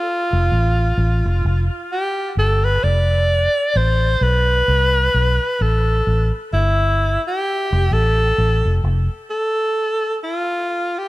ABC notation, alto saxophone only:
X:1
M:4/4
L:1/16
Q:"Swing 16ths" 1/4=65
K:Flyd
V:1 name="Alto saxophone"
F6- F z G2 A B d4 | c2 B6 A3 z E3 G- | G2 A4 z2 A4 F3 G |]